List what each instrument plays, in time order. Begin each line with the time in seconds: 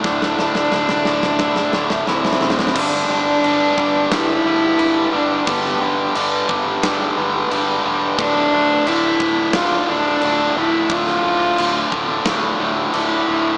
Already playing: clean electric guitar A3 E4, ambient pad E5 D6
0.04 picked electric bass D1, distorted electric guitar D2 A2 D3, clean electric guitar D2, cello D4, ambient pad B5, kick, snare, floor tom
0.22 snare
0.37 picked electric bass D1, distorted electric guitar D2 A2 D3, clean electric guitar A2, snare
0.55 snare
0.72 picked electric bass D1, distorted electric guitar D2 A2 D3, clean electric guitar A2, snare, floor tom
0.89 snare, mid tom
1.05 picked electric bass D1, distorted electric guitar D2 A2 D3, clean electric guitar D3, snare
1.23 snare, floor tom, mid tom
1.39 picked electric bass D1, distorted electric guitar D2 A2 D3, clean electric guitar E4, kick, snare, mid tom
1.56 snare
1.73 picked electric bass D1, distorted electric guitar D2 A2 D3, clean electric guitar A3, snare
1.90 snare, floor tom
2.07 picked electric bass D1, distorted electric guitar D2 A2 D3, cello C4, clean electric guitar E4, snare
2.25 snare, floor tom
2.33 snare
2.41 picked electric bass D1, distorted electric guitar D2 A2 D3, clean electric guitar A3, snare, mid tom
2.50 snare
2.59 snare
2.67 snare
2.73 picked electric bass G1, distorted electric guitar G2 D3 G3, ambient pad G4 B4 A5 D6, kick, crash
2.78 cello D4
3.09 picked electric bass G1, distorted electric guitar G2 D3 G3
3.44 picked electric bass G1, distorted electric guitar G2 D3 G3, crash
3.77 picked electric bass G1, distorted electric guitar G2 D3 G3, kick
4.11 picked electric bass G1, distorted electric guitar G2 D3 G3, cello E4, snare, crash
4.45 picked electric bass G1, distorted electric guitar G2 D3 G3
4.78 picked electric bass G1, distorted electric guitar G2 D3 G3, crash
5.12 picked electric bass G1, distorted electric guitar G2 D3 G3, cello D4
5.45 picked electric bass G1, distorted electric guitar G2 D3 G3, ambient pad G5, kick, crash
5.50 cello B3
5.65 snare
5.80 picked electric bass G1, distorted electric guitar G2 D3 G3
6.14 picked electric bass G1, distorted electric guitar G2 D3 G3, crash
6.48 picked electric bass G1, distorted electric guitar G2 D3 G3, kick
6.83 picked electric bass G1, distorted electric guitar G2 D3 G3, snare, crash
7.17 picked electric bass G1, distorted electric guitar G2 D3 G3
7.51 picked electric bass G1, distorted electric guitar G2 D3 G3, crash
7.84 picked electric bass E1, distorted electric guitar G2 D3 G3
8.18 picked electric bass D1, distorted electric guitar D2 A2 D3, ambient pad F3 E5 A5, cello D4, kick, crash
8.52 picked electric bass D1, distorted electric guitar D2 A2 D3
8.87 picked electric bass D1, distorted electric guitar D2 A2 D3, cello E4, crash
9.20 picked electric bass D1, distorted electric guitar D2 A2 D3, kick
9.53 picked electric bass D1, distorted electric guitar D2 A2 D3, cello F4, snare, crash
9.87 picked electric bass D1, distorted electric guitar D2 A2 D3, cello D4
10.21 picked electric bass D1, distorted electric guitar D2 A2 D3, crash
10.56 picked electric bass D1, distorted electric guitar D2 A2 D3, cello E4
10.89 picked electric bass D1, distorted electric guitar D2 A2 D3, cello F4, ambient pad B5, kick, crash
11.07 snare
11.23 picked electric bass D1, distorted electric guitar D2 A2 D3
11.58 picked electric bass D1, distorted electric guitar D2 A2 D3, crash
11.91 picked electric bass D1, distorted electric guitar D2 A2 D3, kick
12.24 picked electric bass D1, distorted electric guitar D2 A2 D3, snare, crash
12.58 picked electric bass D1, distorted electric guitar D2 A2 D3
12.93 picked electric bass D1, distorted electric guitar D2 A2 D3, cello E4, crash
13.26 picked electric bass D1, distorted electric guitar D2 A2 D3